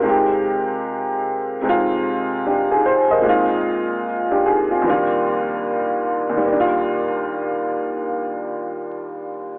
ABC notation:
X:1
M:4/4
L:1/16
Q:"Swing 16ths" 1/4=75
K:Eb
V:1 name="Upright piano"
[FB] z8 z3 [DG] [EA] [Gc] [Be]- | [Be] z4 [DG] [EA] [CF]2 z6 z | z16 |]
V:2 name="Upright piano"
[C,A,CEG]8 [C,A,CEF]8 | [B,,A,CEF]8 [E,,F,G,B,DF]8 | [E,,G,B,DF]16 |]